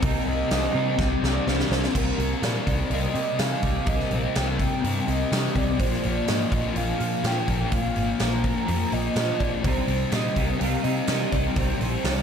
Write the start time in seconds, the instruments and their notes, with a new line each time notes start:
Already playing: clean electric guitar D#4 G4
0.02 picked electric bass C2, distorted electric guitar C3 G3 C4, clean electric guitar A#3, overdriven electric guitar D#4, soft synth lead D#5, kick, open hi-hat
0.26 picked electric bass C2, distorted electric guitar G3 C4, clean electric guitar A#3
0.48 picked electric bass C2, distorted electric guitar C3 G3 C4, clean electric guitar G4, snare, open hi-hat
0.73 picked electric bass C3, overdriven electric guitar C3 D#4, distorted electric guitar G3 C4, clean electric guitar D#4
0.97 picked electric bass C2, distorted electric guitar C3 G3 C4, clean electric guitar G4, kick, snare
1.21 picked electric bass C2, distorted electric guitar C4, clean electric guitar D#4, soft synth lead D5, snare
1.26 distorted electric guitar G3
1.47 picked electric bass C2, distorted electric guitar C3 G3 C4, clean electric guitar A#3, snare
1.60 snare
1.70 picked electric bass C2, distorted electric guitar G3 C4, clean electric guitar A#3, soft synth lead C5, snare
1.84 snare
1.94 picked electric bass C2, distorted electric guitar C3 G3 C4, clean electric guitar A#3, soft synth lead A#4, kick, crash
2.18 picked electric bass C2, clean electric guitar A#3, distorted electric guitar C4, open hi-hat
2.22 distorted electric guitar G3
2.42 picked electric bass A#2, distorted electric guitar C3 G3 C4, clean electric guitar A#3, soft synth lead D5, snare, open hi-hat
2.66 picked electric bass C2, distorted electric guitar G3 C4, clean electric guitar D#4, kick, open hi-hat
2.90 picked electric bass C2, distorted electric guitar C3 G3, clean electric guitar A#3, soft synth lead D#5, open hi-hat
2.94 distorted electric guitar C4
3.14 picked electric bass C3, distorted electric guitar G3 C4, clean electric guitar G4, open hi-hat
3.38 distorted electric guitar C3 G3 C4, picked electric bass C3, clean electric guitar D#4, soft synth lead F5, snare, open hi-hat
3.62 picked electric bass C2, distorted electric guitar G3 C4, clean electric guitar G4, kick, open hi-hat
3.86 picked electric bass C2, distorted electric guitar C3 G3 C4, clean electric guitar A#3, soft synth lead D#5, kick, open hi-hat
4.00 snare
4.10 picked electric bass A#1, clean electric guitar A#3, distorted electric guitar C4, open hi-hat
4.15 distorted electric guitar G3
4.35 picked electric bass C2, distorted electric guitar C3 G3 C4, clean electric guitar A#3, soft synth lead G5, snare, open hi-hat
4.58 distorted electric guitar G3 C4, clean electric guitar D#4, kick, open hi-hat
4.82 picked electric bass G2, distorted electric guitar C3 G3 C4, clean electric guitar A#3, open hi-hat
5.06 picked electric bass C2, distorted electric guitar G3 C4, clean electric guitar G4, soft synth lead D#5, open hi-hat
5.31 distorted electric guitar C3 G3 C4, picked electric bass C3, clean electric guitar D#4, snare, open hi-hat
5.55 picked electric bass C2, distorted electric guitar G3 C4, clean electric guitar G4, soft synth lead D5, kick, open hi-hat
5.79 picked electric bass A#1, distorted electric guitar A#2 F3 A#3, clean electric guitar F3, soft synth lead C5, kick, open hi-hat
5.93 snare
6.02 picked electric bass A#1, clean electric guitar F3, distorted electric guitar F3 A#3, soft synth lead D5, open hi-hat
6.26 picked electric bass G#2, distorted electric guitar A#2 F3 A#3, clean electric guitar F3, soft synth lead D#5, snare, open hi-hat
6.50 picked electric bass A#1, distorted electric guitar F3 A#3, clean electric guitar C4, kick, open hi-hat
6.74 picked electric bass A#1, distorted electric guitar A#2 F3 A#3, clean electric guitar F3, soft synth lead F5, open hi-hat
6.98 picked electric bass A#2, distorted electric guitar A#3, clean electric guitar D4, open hi-hat
7.02 distorted electric guitar F3
7.23 distorted electric guitar A#2 F3 A#3, picked electric bass A#2, clean electric guitar C4, soft synth lead G5, snare, open hi-hat
7.47 picked electric bass A#1, distorted electric guitar F3 A#3, clean electric guitar D4, kick, open hi-hat
7.72 picked electric bass A#1, distorted electric guitar A#2 F3 A#3, clean electric guitar F3, soft synth lead F5, kick, open hi-hat
7.96 picked electric bass G#1, clean electric guitar F3, distorted electric guitar A#3, open hi-hat
8.00 distorted electric guitar F3
8.19 picked electric bass A#1, distorted electric guitar A#2 F3 A#3, clean electric guitar F3, soft synth lead A#5, snare, open hi-hat
8.44 distorted electric guitar F3 A#3, clean electric guitar C4, kick, open hi-hat
8.68 picked electric bass F2, distorted electric guitar A#2 F3 A#3, clean electric guitar F3, open hi-hat
8.91 picked electric bass A#1, distorted electric guitar A#3, soft synth lead D#5, open hi-hat
8.95 distorted electric guitar F3
9.16 picked electric bass A#2, distorted electric guitar A#2 F3 A#3, clean electric guitar C4, snare, open hi-hat
9.39 picked electric bass A#1, distorted electric guitar A#3, clean electric guitar D4, soft synth lead D5, kick, open hi-hat
9.44 distorted electric guitar F3
9.63 picked electric bass C2, distorted electric guitar C3 G3 C4, clean electric guitar G3, soft synth lead C5, kick, open hi-hat
9.67 overdriven electric guitar D#4
9.88 picked electric bass C2, clean electric guitar G3, distorted electric guitar G3 C4, overdriven electric guitar D#4, open hi-hat
10.11 picked electric bass A#2, distorted electric guitar C3 G3, clean electric guitar G3, overdriven electric guitar D#4, soft synth lead D#5, snare, open hi-hat
10.15 distorted electric guitar C4
10.35 picked electric bass C2, distorted electric guitar G3 C4, clean electric guitar A#3, overdriven electric guitar D#4, kick, open hi-hat
10.39 overdriven electric guitar C4
10.58 picked electric bass C2, distorted electric guitar C3 G3 C4, clean electric guitar G3, soft synth lead F5, open hi-hat
10.64 overdriven electric guitar D#4
10.83 picked electric bass C3, distorted electric guitar G3 C4, overdriven electric guitar D#4, clean electric guitar D#4, soft synth lead D#5, open hi-hat
11.07 distorted electric guitar C3 G3 C4, picked electric bass C3, clean electric guitar A#3, snare, open hi-hat
11.13 overdriven electric guitar D#4
11.32 picked electric bass C2, distorted electric guitar G3 C4, overdriven electric guitar D#4, clean electric guitar D#4, soft synth lead D5, kick, open hi-hat
11.56 picked electric bass C2, distorted electric guitar C3 G3 C4, clean electric guitar G3, overdriven electric guitar D#4, soft synth lead C5, kick, open hi-hat
11.80 picked electric bass A#1, clean electric guitar G3, distorted electric guitar C4, overdriven electric guitar D#4, open hi-hat
11.84 distorted electric guitar G3
12.04 picked electric bass C2, distorted electric guitar C3 G3 C4, clean electric guitar G3, overdriven electric guitar D#4, soft synth lead D#5, snare, open hi-hat